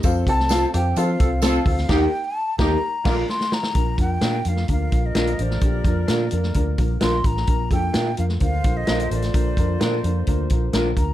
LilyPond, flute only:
\new Staff \with { instrumentName = "Flute" } { \time 4/4 \key bes \major \tempo 4 = 129 r8 a''4 g''8 f''4 f''4 | g''8. a''8. bes''4. c'''8 bes''8~ | bes''8 g''4 f''8 f''8. ees''8. d''8~ | d''2~ d''8 r8 c'''8 bes''8~ |
bes''8 g''4 f''8 f''8. ees''8. d''8~ | d''2~ d''8 r4 bes''8 | }